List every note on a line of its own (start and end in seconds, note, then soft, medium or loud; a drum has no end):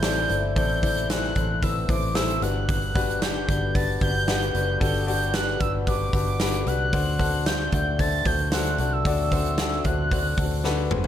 0.00 0.26 A1 loud
0.00 0.56 A2 medium
0.00 2.38 C3 medium
0.00 2.38 E3 medium
0.00 0.54 A3 medium
0.00 0.03 C4 loud
0.00 0.23 C4 medium
0.00 0.03 E4 medium
0.00 2.39 E4 medium
0.00 0.23 E4 medium
0.00 0.03 A4 medium
0.00 0.23 A4 medium
0.00 1.10 C5 loud
0.00 0.04 D5 loud
0.00 0.23 D5 loud
0.00 0.53 G6 loud
0.00 snare loud
0.00 hi-hat pedal medium
0.00 open hi-hat loud
0.29 0.55 G1 medium
0.29 0.49 C4 medium
0.29 0.50 E4 medium
0.29 0.50 A4 medium
0.29 0.50 D5 medium
0.29 hi-hat pedal medium
0.29 open hi-hat medium
0.56 1.32 A1 loud
0.56 1.32 A2 medium
0.56 2.41 B3 medium
0.56 0.76 C4 loud
0.56 0.76 E4 medium
0.56 0.76 A4 medium
0.56 0.76 D5 loud
0.56 0.81 G6 loud
0.56 kick loud
0.56 hi-hat pedal medium
0.56 open hi-hat medium
0.69 open hi-hat medium
0.82 1.03 C4 loud
0.82 1.03 E4 medium
0.82 1.03 A4 medium
0.82 1.03 D5 loud
0.82 1.07 G6 loud
0.82 kick medium
0.82 hi-hat pedal medium
0.82 open hi-hat medium
0.96 hi-hat pedal medium
1.09 1.29 C4 medium
1.09 1.29 E4 medium
1.09 1.29 A4 medium
1.09 1.30 C5 medium
1.09 1.64 F#6 loud
1.09 snare loud
1.09 hi-hat pedal medium
1.09 open hi-hat loud
1.23 snare soft
1.35 1.85 A1 loud
1.35 1.56 C4 medium
1.35 1.56 E4 medium
1.35 1.56 A4 medium
1.35 1.56 C5 medium
1.35 kick medium
1.35 hi-hat pedal medium
1.35 open hi-hat medium
1.62 1.82 C4 medium
1.62 1.82 E4 medium
1.62 1.82 A4 medium
1.62 1.82 B4 medium
1.62 1.88 E6 medium
1.62 kick medium
1.62 hi-hat pedal medium
1.62 open hi-hat medium
1.89 2.38 A1 loud
1.89 2.09 C4 medium
1.89 2.09 E4 medium
1.89 2.09 A4 medium
1.89 2.09 C5 medium
1.89 2.16 D6 medium
1.89 kick loud
1.89 hi-hat pedal medium
1.89 open hi-hat medium
2.02 open hi-hat medium
2.15 2.35 C4 loud
2.15 2.36 E4 medium
2.15 2.36 A4 medium
2.15 2.36 C5 loud
2.15 2.44 E6 loud
2.15 snare loud
2.15 hi-hat pedal medium
2.15 open hi-hat medium
2.29 hi-hat pedal medium
2.42 3.44 G1 medium
2.42 3.18 G2 medium
2.42 11.07 D3 medium
2.42 6.89 G3 medium
2.42 6.89 B3 medium
2.42 2.85 D4 medium
2.42 4.52 D4 medium
2.42 2.85 F#4 medium
2.42 2.85 G4 medium
2.42 2.85 B4 medium
2.42 3.21 F#6 loud
2.42 hi-hat pedal medium
2.42 open hi-hat medium
2.69 kick loud
2.69 hi-hat pedal medium
2.69 open hi-hat medium
2.82 open hi-hat medium
2.95 3.15 D4 loud
2.95 3.15 F#4 medium
2.95 3.15 G4 medium
2.95 3.15 B4 loud
2.95 kick loud
2.95 hi-hat pedal medium
2.95 open hi-hat medium
3.09 hi-hat pedal medium
3.21 3.41 D4 medium
3.21 3.41 F#4 medium
3.21 3.41 G4 medium
3.21 3.42 B4 medium
3.21 3.76 G6 loud
3.21 snare loud
3.21 hi-hat pedal medium
3.21 open hi-hat loud
3.48 3.98 G1 loud
3.48 3.68 D4 medium
3.48 3.68 F#4 medium
3.48 3.68 G4 medium
3.48 3.68 B4 medium
3.48 kick medium
3.48 hi-hat pedal medium
3.48 open hi-hat medium
3.74 3.94 D4 medium
3.74 3.94 F#4 medium
3.74 3.95 G4 medium
3.74 3.95 B4 medium
3.74 4.01 A6 loud
3.74 kick loud
3.74 hi-hat pedal medium
3.74 open hi-hat medium
4.01 4.51 G1 loud
4.01 4.21 D4 medium
4.01 4.21 F#4 medium
4.01 4.21 G4 medium
4.01 4.21 B4 medium
4.01 4.77 G6 loud
4.01 kick loud
4.01 hi-hat pedal medium
4.01 open hi-hat medium
4.15 open hi-hat medium
4.27 4.47 D4 medium
4.27 4.48 F#4 medium
4.27 4.48 G4 medium
4.27 4.48 B4 loud
4.27 snare loud
4.27 hi-hat pedal medium
4.27 open hi-hat medium
4.42 hi-hat pedal medium
4.54 4.79 F#1 medium
4.54 5.30 G2 medium
4.54 4.74 D4 medium
4.54 4.74 F#4 medium
4.54 4.74 G4 medium
4.54 6.91 G4 medium
4.54 4.74 B4 medium
4.54 hi-hat pedal medium
4.54 open hi-hat medium
4.80 5.57 G1 loud
4.80 5.00 D4 loud
4.80 5.00 F#4 medium
4.80 5.00 G4 loud
4.80 5.01 A4 loud
4.80 5.05 G6 medium
4.80 kick loud
4.80 hi-hat pedal medium
4.80 open hi-hat medium
4.94 open hi-hat medium
5.07 5.27 D4 medium
5.07 5.27 F#4 loud
5.07 5.27 G4 medium
5.07 5.27 D5 loud
5.07 5.35 G6 loud
5.07 hi-hat pedal medium
5.07 open hi-hat medium
5.21 hi-hat pedal medium
5.33 5.54 D4 medium
5.33 5.54 F#4 medium
5.33 5.54 G4 medium
5.33 5.54 B4 medium
5.33 5.59 F#6 loud
5.33 snare loud
5.33 hi-hat pedal medium
5.33 open hi-hat medium
5.47 snare soft
5.60 6.10 G1 loud
5.60 5.80 D4 medium
5.60 5.80 F#4 medium
5.60 5.80 G4 medium
5.60 5.80 B4 medium
5.60 5.72 E6 medium
5.60 kick loud
5.60 hi-hat pedal medium
5.60 open hi-hat medium
5.87 6.07 D4 medium
5.87 6.07 F#4 medium
5.87 6.07 G4 medium
5.87 6.07 B4 medium
5.87 6.12 D6 medium
5.87 kick medium
5.87 hi-hat pedal medium
5.87 open hi-hat loud
6.13 6.63 G1 loud
6.13 6.33 D4 medium
6.13 6.33 F#4 medium
6.13 6.33 G4 medium
6.13 6.33 B4 medium
6.13 kick loud
6.13 hi-hat pedal medium
6.13 open hi-hat medium
6.26 open hi-hat medium
6.40 6.60 D4 loud
6.40 6.60 F#4 medium
6.40 6.60 G4 medium
6.40 6.60 B4 loud
6.40 snare loud
6.40 hi-hat pedal medium
6.40 open hi-hat loud
6.54 hi-hat pedal medium
6.66 6.91 C2 medium
6.66 6.86 D4 medium
6.66 6.86 F#4 medium
6.66 6.87 G4 medium
6.66 6.87 B4 medium
6.66 7.47 F#6 loud
6.66 hi-hat pedal medium
6.66 open hi-hat medium
6.93 7.69 D2 loud
6.93 7.69 D3 medium
6.93 11.07 A3 medium
6.93 11.07 C4 medium
6.93 7.13 D4 loud
6.93 11.07 F#4 medium
6.93 7.13 F#4 loud
6.93 7.13 A4 medium
6.93 7.13 C5 loud
6.93 kick loud
6.93 hi-hat pedal medium
6.93 open hi-hat medium
7.19 7.39 D4 loud
7.19 7.39 F#4 loud
7.19 7.39 A4 medium
7.19 7.40 C5 loud
7.19 kick medium
7.19 hi-hat pedal medium
7.19 open hi-hat medium
7.46 7.66 D4 medium
7.46 7.66 F#4 medium
7.46 7.66 A4 medium
7.46 7.66 C5 medium
7.46 8.01 G6 loud
7.46 snare loud
7.46 hi-hat pedal medium
7.46 open hi-hat loud
7.59 snare soft
7.72 8.22 D2 loud
7.72 7.92 D4 medium
7.72 7.92 F#4 medium
7.72 7.92 A4 medium
7.72 7.93 D5 medium
7.72 kick loud
7.72 hi-hat pedal medium
7.72 open hi-hat medium
7.99 8.19 D4 medium
7.99 8.19 F#4 medium
7.99 8.19 A4 medium
7.99 8.19 C5 medium
7.99 8.28 A6 loud
7.99 kick medium
7.99 hi-hat pedal medium
7.99 open hi-hat medium
8.25 8.75 D2 loud
8.25 8.45 D4 medium
8.25 8.46 F#4 medium
8.25 8.46 A4 medium
8.25 8.46 C5 medium
8.25 8.54 G6 loud
8.25 kick loud
8.25 hi-hat pedal medium
8.25 open hi-hat medium
8.39 open hi-hat medium
8.52 8.72 D4 loud
8.52 8.72 F#4 medium
8.52 8.72 A4 loud
8.52 8.73 C5 loud
8.52 8.94 F#6 loud
8.52 snare loud
8.52 hi-hat pedal medium
8.52 open hi-hat loud
8.65 hi-hat pedal medium
8.78 9.03 C2 medium
8.78 8.99 D4 medium
8.78 8.99 F#4 medium
8.78 8.99 A4 medium
8.78 8.99 D5 medium
8.78 hi-hat pedal medium
8.78 open hi-hat medium
8.92 9.86 E6 loud
9.05 9.81 D2 loud
9.05 9.81 D3 medium
9.05 9.26 D4 loud
9.05 9.26 F#4 loud
9.05 9.26 A4 loud
9.05 9.26 D5 loud
9.05 kick loud
9.05 hi-hat pedal medium
9.05 open hi-hat medium
9.18 open hi-hat medium
9.32 9.52 D4 medium
9.32 9.52 F#4 medium
9.32 9.52 A4 medium
9.32 9.52 C5 loud
9.32 kick medium
9.32 hi-hat pedal medium
9.32 open hi-hat medium
9.45 hi-hat pedal medium
9.57 9.79 D4 medium
9.57 9.79 F#4 medium
9.57 9.79 A4 medium
9.57 9.79 D5 medium
9.57 snare loud
9.57 hi-hat pedal medium
9.57 open hi-hat medium
9.71 snare soft
9.84 10.34 D2 loud
9.84 10.05 D4 medium
9.84 10.05 F#4 medium
9.84 10.05 A4 medium
9.84 10.05 C5 medium
9.84 10.91 F#6 loud
9.84 kick loud
9.84 hi-hat pedal medium
9.84 open hi-hat medium
10.11 10.31 D4 medium
10.11 10.32 F#4 medium
10.11 10.32 A4 medium
10.11 10.32 C5 medium
10.11 kick medium
10.11 hi-hat pedal medium
10.11 open hi-hat medium
10.38 10.87 D2 loud
10.38 10.58 D4 medium
10.38 10.58 F#4 medium
10.38 10.58 A4 medium
10.38 10.58 C5 medium
10.38 kick loud
10.38 hi-hat pedal medium
10.38 open hi-hat medium
10.51 open hi-hat medium
10.64 10.84 D4 loud
10.64 10.84 F#4 loud
10.64 10.84 A4 loud
10.64 10.84 B4 loud
10.64 snare medium
10.91 11.07 F#1 medium
10.91 11.07 D4 medium
10.91 11.07 F#4 medium
10.91 11.07 A4 medium
10.91 11.07 C5 loud
10.91 mid tom loud
11.04 floor tom loud